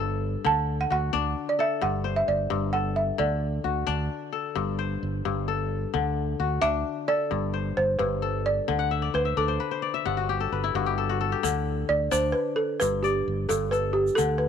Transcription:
Already playing: G1 G2 C5
0.00 A4
0.45 D2 D3 A5
0.81 F#5
0.90 D2 F#4 F#5
1.13 D2 D4
1.49 D5
1.59 A4 E5
1.81 G1 G2 F#5
2.04 C5
2.16 E5
2.28 G1 D5
2.50 G1 G2
2.73 A4 F#5
2.96 E5
3.18 D2 D3 D5
3.64 D2 F#4
3.87 D2 D4
4.33 A4
4.55 G1 G2
4.79 C5
5.03 G1
5.25 G1 G2
5.48 A4
5.94 D2 D3
6.40 D2 F#4
6.62 D2 D4 E5
7.08 A4 D5
7.31 G1 G2
7.54 C5
7.77 G1 C5
7.99 G1 G2 B4
8.22 A4
8.46 D5
8.68 D2 D3
8.79 F#5
8.91 E5
9.02 D5
9.14 D2 B4 C5
9.25 E5
9.37 D2 D4 A4 D5
9.48 C5
9.60 B4
9.71 C5
9.82 D5
9.94 E5
10.05 G1 G2 F#5
10.17 F#4
10.29 G4
10.40 A4
10.52 G1 B4
10.64 E4
10.75 G1 G2 F#4
10.86 G4
10.98 A4
11.09 F#4
11.21 A4
11.32 G4
11.43 D2 D3, shaker
11.89 D2 D5
12.12 D2 D4 C5, shaker
12.32 B4
12.56 A4
12.80 G1 G2 B4, shaker
13.03 G4 D5, shaker
13.28 G1
13.49 G1 G2 A4, shaker
13.71 A4 B4, shaker
13.93 G4
14.07 shaker
14.15 D2 D3 A4, shaker
14.38 B4

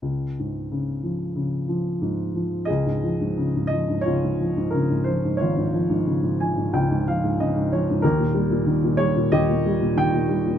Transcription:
0.02 C#2
0.39 G#2
0.71 C#3
1.03 F3
1.36 C#3
1.68 F3
2.02 G#2
2.35 F3
2.65 G#4 D#5
2.70 C#2
2.86 G#2
3.04 F3
3.21 G#2
3.37 C#3
3.56 G#2
3.67 D#5
3.72 F3
3.90 G#2
4.01 C#5
4.06 C#2 F4
4.23 G#2
4.40 F3
4.57 G#2
4.71 C#3 A#4
4.91 G#2
5.04 F3 C5
5.25 G#2
5.37 G#1 F4 C#5
5.57 G#2
5.73 F3
5.90 G#2
6.06 C#3
6.23 G#2
6.40 F3 G#5
6.57 G#2
6.73 C#2 G5
6.91 G#2
7.07 F3 F5
7.24 G#2
7.39 C#3 D#5
7.56 G#2
7.72 F3 C#5
7.90 G#2
8.02 D#2 G4 A#4
8.19 A#2
8.34 G3
8.51 A#2
8.66 D#3
8.84 A#2
8.97 G3 C#5
9.16 A#2
9.32 D#2 G4 D#5
9.49 A#2
9.66 G3
9.81 A#2
9.96 D#3 G5
10.13 A#2
10.29 G3
10.47 A#2

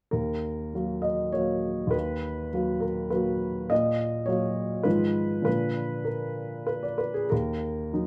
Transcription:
0.11 D#2 A#4
0.74 F#3 A#3 F#4
1.02 D#5
1.32 F#3 A#3 F#4 C#5
1.87 D#2 B4
2.53 F#3 A#3 F#4
2.80 A#4
3.10 F#3 A#3 F#4 B4
3.70 A#2 D#5
4.26 F#3 A#3 F#4 C#5
4.83 G#2 D#3 F3 F4 B4
5.42 A#2 D3 F3 F4 B4
6.05 A#4
6.67 B4
6.83 D5
6.98 B4
7.14 G#4
7.30 D#2 A#4
7.93 D#3 F#3 D#4

